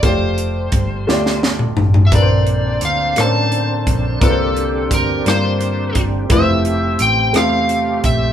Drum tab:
HH |x-x-x-------|x-x-x-x-x-x-|x-x-x-x-x-x-|x-x-x-x-x-x-|
SD |------ooo---|------r-----|----r-r-----|------r-----|
T2 |---------o--|------------|------------|------------|
FT |----------oo|------------|------------|------------|
BD |o---o-------|o---------o-|o---o-----o-|o---------o-|